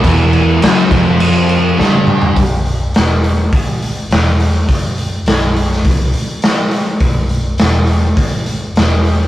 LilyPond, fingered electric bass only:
\new Staff \with { instrumentName = "Fingered electric bass" } { \clef bass \time 4/4 \key c \lydian \tempo 4 = 103 e,,4 fis,,8 eis,,4. g,,4 | b,,,4 e,,4 g,,4 e,,4 | fis,,4 b,,,4 c,,8 r4. | b,,,4 e,,4 g,,4 e,,4 | }